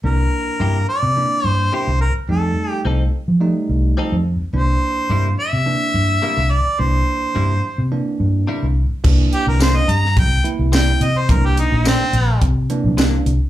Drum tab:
CC |----------------|----------------|----------------|----------------|
HH |----------------|----------------|----------------|----------------|
TB |----------------|----------------|----------------|----------------|
SD |----------------|----------------|----------------|----------------|
BD |----------------|----------------|----------------|----------------|

CC |x---------------|----------------|
HH |--x-x-x-x-x-x-x-|x-x-x-x-x-x-x-x-|
TB |----x-------x---|----x-------x---|
SD |----o--o----o---|----o-------o---|
BD |o-------o-------|o-------o-------|